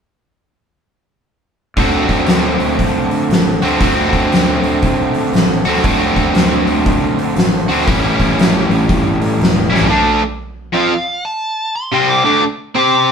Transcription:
1.76 fingered electric bass D2, overdriven electric guitar D3 A3 C4 F#4, kick, open hi-hat
2.09 fingered electric bass D2, kick, open hi-hat
2.27 fingered electric bass D2, snare, open hi-hat
2.60 fingered electric bass D2, open hi-hat
2.79 fingered electric bass C2, kick, open hi-hat
3.11 fingered electric bass D3, open hi-hat
3.29 fingered electric bass A1, snare, open hi-hat
3.62 fingered electric bass D2, overdriven electric guitar D3 A3 C4 F#4, open hi-hat
3.80 fingered electric bass D2, overdriven electric guitar D3 A3 C4 F#4, kick, open hi-hat
4.13 fingered electric bass D2, kick, open hi-hat
4.32 fingered electric bass D2, snare, open hi-hat
4.63 fingered electric bass D2, open hi-hat
4.82 fingered electric bass C2, kick, open hi-hat
5.14 fingered electric bass D3, open hi-hat
5.33 fingered electric bass A1, snare, open hi-hat
5.65 fingered electric bass D2, overdriven electric guitar D3 A3 C4 F#4, open hi-hat
5.76 snare
5.84 fingered electric bass D2, overdriven electric guitar D3 A3 C4 F#4, kick, open hi-hat
6.16 fingered electric bass D2, kick, open hi-hat
6.35 fingered electric bass D2, snare, open hi-hat
6.67 fingered electric bass D2, open hi-hat
6.86 fingered electric bass C2, kick, open hi-hat
7.17 fingered electric bass D3, open hi-hat
7.36 fingered electric bass A1, snare, open hi-hat
7.68 fingered electric bass D2, overdriven electric guitar D3 A3 C4 F#4, open hi-hat
7.81 snare
7.86 fingered electric bass A1, overdriven electric guitar A2 E3 G3 C#4 E4, kick, open hi-hat
8.19 fingered electric bass A1, kick, open hi-hat
8.38 fingered electric bass A1, snare, open hi-hat
8.70 fingered electric bass A1, open hi-hat
8.89 fingered electric bass G1, kick, open hi-hat
9.21 fingered electric bass A2, open hi-hat
9.40 fingered electric bass E1, snare, open hi-hat
9.70 fingered electric bass A1, overdriven electric guitar A2 E3 G3 C#4 E4
9.74 snare
9.81 floor tom
9.89 overdriven electric guitar D3 A3 D4
10.23 muted overdriven electric guitar stroke
10.73 overdriven electric guitar F3 C4 F4
10.77 lead electric guitar F5
11.25 lead electric guitar A5
11.76 lead electric guitar C6
11.92 overdriven electric guitar C3 G3 C4
12.10 lead electric guitar D6
12.25 overdriven electric guitar D3 A3 D4
12.43 muted overdriven electric guitar stroke
12.75 overdriven electric guitar C4 G4 C5, lead electric guitar D6
12.94 lead electric guitar D6

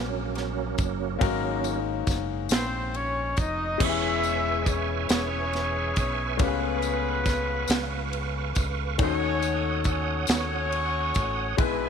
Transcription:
Already playing: fingered electric bass A#1, grand piano G#2 A#3 C#4 D#4 F#4 G#4, tonewheel organ F#3 A#3 C#4
0.35 snare, ride
0.78 fingered electric bass F#1, kick, ride, tambourine
1.19 fingered electric bass G#1, grand piano G#2 A#3 C#4 D#4 F#4 A#4, tonewheel organ F#3, kick, ride
1.23 tonewheel organ A#3 C#4
1.64 ride, tambourine
2.07 fingered electric bass F#1, kick, snare, ride, tambourine
2.49 fingered electric bass A#1, horn section C4 C5, snare, ride, tambourine
2.94 horn section C#4 C#5, ride
3.37 fingered electric bass F1, horn section D#4 D#5, kick, ride, tambourine
3.78 fingered electric bass E1, grand piano E3 G#3 B3 C#4 E4 G4, tonewheel organ E5 G#5, kick, crash
3.82 horn section E4 G#4 C#5 E5, tonewheel organ B4 C#6
3.89 grand piano G#4
4.23 ride, tambourine
4.66 horn section C#4 C#5, kick, ride, tambourine
5.09 fingered electric bass E1, snare, ride, tambourine
5.13 horn section C#4 G#4 C#5
5.53 snare, ride
5.96 fingered electric bass B1, horn section C#4 C#5, kick, ride, tambourine
6.37 fingered electric bass C#2, grand piano C#3 A3 B3 C#4 F4 G4, kick, ride
6.42 horn section B3 F4 G#4 B4, tonewheel organ F5 C#6
6.48 grand piano G#4
6.82 ride, tambourine
7.26 kick, snare, ride, tambourine
7.68 fingered electric bass C#2, snare, ride, tambourine
8.13 ride
8.55 fingered electric bass C#2, kick, ride, tambourine
8.98 fingered electric bass D#2, grand piano D#3 A3 C#4 D#4 F#4 A4, horn section F#4 A4, tonewheel organ C#5 F#5 D#6, kick, ride
9.02 horn section C#4 C#5
9.42 ride, tambourine
9.84 kick, ride, tambourine
9.90 horn section C#4 C#5
10.27 fingered electric bass D#2, horn section F#4 A4, snare, ride, tambourine
10.32 horn section C#4 C#5
10.72 ride
11.14 fingered electric bass A1, kick, ride, tambourine
11.57 fingered electric bass B1, grand piano B2 G#3 B3 E4 G#4 B4, horn section E4 G#4, tonewheel organ B4 E5 G#5, kick, ride
11.62 horn section B3 B4

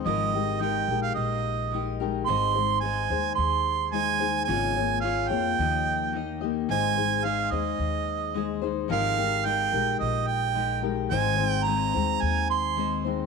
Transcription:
0.05 upright bass G#1, steel-string acoustic guitar G#2 F3 G#3 D#4 G4 A#4, harmonica D#5
0.34 steel-string acoustic guitar G#3 D#4 G4 A#4
0.59 steel-string acoustic guitar G#3 D#4 G4 A#4, harmonica G5
0.88 upright bass A#1, steel-string acoustic guitar D#4 G4 A#4
0.92 steel-string acoustic guitar G#3
1.02 harmonica F5
1.15 upright bass A#1, harmonica D#5
1.72 steel-string acoustic guitar G#3 D#4 G4 A#4
2.00 steel-string acoustic guitar G#3 D#4 G4 A#4
2.26 upright bass G#1, steel-string acoustic guitar G#2 D#3 G#3 D#4 G#4 C5, harmonica C6
2.54 steel-string acoustic guitar G#3 D#4 G#4 C5
2.80 steel-string acoustic guitar G#3 D#4, harmonica G#5
2.85 steel-string acoustic guitar G#4 C5
3.10 upright bass D#2, steel-string acoustic guitar G#3 D#4 G#4 C5
3.35 upright bass D#2, harmonica C6
3.92 steel-string acoustic guitar G#3 D#4 G#4 C5, harmonica G#5
4.20 steel-string acoustic guitar G#3 D#4 G#4 C5
4.45 upright bass G#1, steel-string acoustic guitar G#2 C#3 A#3 F4, harmonica G#5
4.49 steel-string acoustic guitar G#4 C#5
4.76 steel-string acoustic guitar A#3 F4 G#4 C#5
5.01 steel-string acoustic guitar A#3 F4 G#4, harmonica F5
5.05 steel-string acoustic guitar C#5
5.28 upright bass F2, steel-string acoustic guitar F4 G#4 C#5, harmonica G5
5.33 steel-string acoustic guitar A#3
5.58 upright bass D#2, steel-string acoustic guitar D#3 F3 A#3 D#4 G4 D#5
6.13 steel-string acoustic guitar A#3 D#4 G4 D#5
6.41 steel-string acoustic guitar A#3 D#4 G4 D#5
6.69 upright bass G#1, steel-string acoustic guitar G#2 D#3 G#3 D#4 G#4 C5, harmonica G#5
6.96 steel-string acoustic guitar G#3 D#4 G#4 C5
7.24 steel-string acoustic guitar G#3 D#4 G#4 C5, harmonica F5
7.51 upright bass D#2, steel-string acoustic guitar D#4 G#4 C5, harmonica D#5
7.55 steel-string acoustic guitar G#3
7.79 upright bass D#2
8.34 steel-string acoustic guitar G#3 D#4 G#4 C5
8.62 steel-string acoustic guitar G#3 D#4 G#4 C5
8.88 upright bass G#1, steel-string acoustic guitar G#2 F3 G#3 D#4 G4 A#4, harmonica F5
9.17 steel-string acoustic guitar G#3 D#4 G4 A#4
9.44 steel-string acoustic guitar G#3 D#4 G4 A#4, harmonica G5
9.72 upright bass A#1, steel-string acoustic guitar G#3 D#4 G4 A#4
9.99 upright bass A#1, harmonica D#5
10.27 harmonica G5
10.54 steel-string acoustic guitar G#3 D#4 G4 A#4
10.82 steel-string acoustic guitar G#3 D#4 G4 A#4
11.10 upright bass G#1, steel-string acoustic guitar G#2 D#3 G#3 C4 D#4 C5, harmonica G#5
11.37 steel-string acoustic guitar G#3 C4 D#4 C5
11.48 harmonica G5
11.64 steel-string acoustic guitar G#3 C4, harmonica A#5
11.68 steel-string acoustic guitar D#4 C5
11.93 upright bass D#2, steel-string acoustic guitar G#3 C4 D#4 C5
12.21 upright bass D#2, harmonica G#5
12.50 harmonica C6
12.77 steel-string acoustic guitar G#3 C4 D#4 C5
13.05 steel-string acoustic guitar G#3 C4 D#4 C5

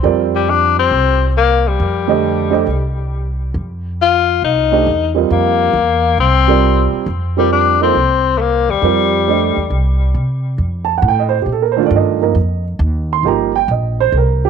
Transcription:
0.03 upright bass F2, grand piano G3 C4 F4 A#4 D5
0.36 tenor saxophone G3
0.50 tenor saxophone D4
0.79 tenor saxophone C4
0.91 upright bass C2
1.37 tenor saxophone A#3
1.68 tenor saxophone G3
1.80 upright bass F2
2.08 grand piano D3 A3 G4 C5 D#5
2.50 grand piano A3 D4 G4 C5 D#5
2.67 upright bass C2
3.54 upright bass F2
4.02 tenor saxophone F4
4.42 upright bass C2, tenor saxophone D#4
4.72 grand piano A3 D4 G4 C5 D#5
4.86 upright bass E2
5.15 grand piano G3 C4 F4 A#4 D#5
5.30 upright bass F2, tenor saxophone A#3
5.73 upright bass E2
6.18 upright bass C2, tenor saxophone C4
6.48 grand piano G3 C4 F4 A#4 D5
6.93 muted upright bass stroke
7.06 upright bass F2
7.37 grand piano G3 C4 F4 A#4 D5, tenor saxophone G3
7.52 tenor saxophone D4
7.80 grand piano F3 A#3 D#4 A4 C5, tenor saxophone C4
7.95 upright bass C2
8.37 tenor saxophone A3 A#3
8.68 upright bass D#2, tenor saxophone G3
8.82 upright bass F2, grand piano G3 C4 F4 A#4 D5
9.28 grand piano A3 D4 G4 C5 D#5
9.56 upright bass E2
9.70 upright bass C2
10.14 upright bass C3
10.58 upright bass F2
10.85 grand piano A5
10.98 grand piano F#5
11.02 upright bass A2
11.08 grand piano G5
11.20 grand piano D#5
11.29 grand piano C5
11.42 upright bass A#2, grand piano G4
11.52 grand piano A4
11.62 grand piano A#4
11.72 grand piano C5
11.77 grand piano D#3 A3 D4 F4
11.86 grand piano D5
11.91 upright bass G2
11.96 grand piano D#5
12.21 grand piano F3 A#3 D#4 A#4
12.35 upright bass F2
12.79 upright bass D#2
13.13 grand piano C6
13.23 upright bass G1, grand piano F3 A#3 D#4 G4
13.28 grand piano A#5
13.55 grand piano G5
13.68 upright bass A#1, grand piano D#5
14.00 grand piano C5
14.12 upright bass C2, grand piano A4
14.17 grand piano A#4
14.45 grand piano G4

